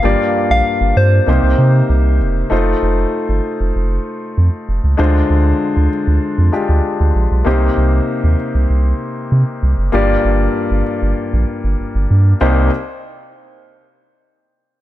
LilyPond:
<<
  \new Staff \with { instrumentName = "Soft synth lead" } { \time 4/4 \key c \minor \tempo 4 = 97 f''8. f''8. c''2 r8 | r1 | r1 | r1 |
r1 | r1 | }
  \new Staff \with { instrumentName = "Grand piano" } { \time 4/4 \key c \minor <bes f' g' d''>2 <bes ees' g' c''>2 | <a ees' f' c''>1 | <aes d' f' c''>2~ <aes d' f' c''>8 <aes d' f' g'>4. | <bes ees' g' c''>1 |
<bes f' g' d''>1 | <bes ees' g' c''>8 r2. r8 | }
  \new Staff \with { instrumentName = "Grand piano" } { \clef bass \time 4/4 \key c \minor g,4. r8 c4. r8 | r1 | d4. r2 r8 | c4. r2 r8 |
g,4. r2 r8 | c,8 r2. r8 | }
  \new Staff \with { instrumentName = "Analog synth bass" } { \clef bass \time 4/4 \key c \minor g,,16 r8 bes,,16 r16 g,,16 g,8 c,16 c,16 c8 c,8 e,,8 | f,,8 f,,8 r16 g,,16 r16 f,,16 f,,8 r8 f,16 r16 f,,16 des,16 | d,8 d,8 r16 d,16 r16 d,16 r16 f,16 r16 d,16 r16 d,16 bes,,16 b,,16 | c,8 c,8 r16 ees,16 r16 c,16 c,8 r8 c16 r16 c,16 fis,,16 |
g,,8 g,,8 r16 g,,16 r16 g,,16 r16 bes,,16 r16 g,,16 g,,16 g,,16 g,8 | c,8 r2. r8 | }
>>